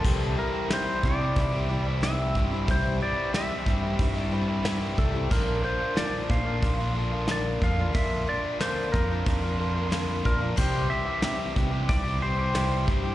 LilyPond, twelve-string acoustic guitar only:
\new Staff \with { instrumentName = "Twelve-string acoustic guitar" } { \time 4/4 \key c \mixolydian \tempo 4 = 91 <c g c' e' g'>8 <g c' e' g'>8 <c g c' e' g'>8 <g c' e' g'>8. <c' e' g'>16 <g c' e' g'>8 <c g c' e' g'>8 <g c' e' g'>16 <c' e' g'>16 | <c g c' e' g'>8 <g c' e' g'>8 <c g c' e' g'>8 <g c' e' g'>8. <c' e' g'>16 <g c' e' g'>8 <c g c' e' g'>8 <g c' e' g'>16 <c' e' g'>16 | <bes, d f bes d' bes'>8 <f bes d' bes'>8 <bes, d f bes d' bes'>8 <f bes d' bes'>8. <f bes d' bes'>16 <f bes d' bes'>8 <bes, d f bes d' bes'>8 <f bes d' bes'>16 <f bes d' bes'>16 | <bes, d f bes d' bes'>8 <f bes d' bes'>8 <bes, d f bes d' bes'>8 <f bes d' bes'>16 <f bes d' bes'>8 <f bes d' bes'>16 <f bes d' bes'>8 <bes, d f bes d' bes'>8 <f bes d' bes'>16 <f bes d' bes'>16 |
<c g c' e' g'>8 <g c' e' g'>8 <c g c' e' g'>8 <g c' e' g'>16 <c' e' g'>8 <c' e' g'>16 <g c' e' g'>8 <c g c' e' g'>8 <g c' e' g'>16 <c' e' g'>16 | }